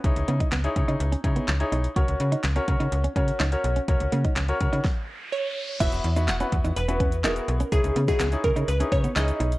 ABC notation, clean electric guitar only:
X:1
M:4/4
L:1/16
Q:1/4=125
K:Elyd
V:1 name="Clean electric guitar"
z2 B, D B, z2 D z C z B, z2 D z | F z2 D z C z D z C C z D z2 C | z2 A, D C z2 D z8 | E z2 D z C z D z C C z D z2 C |
z2 B, D B, z2 D z C z B, z2 D z |]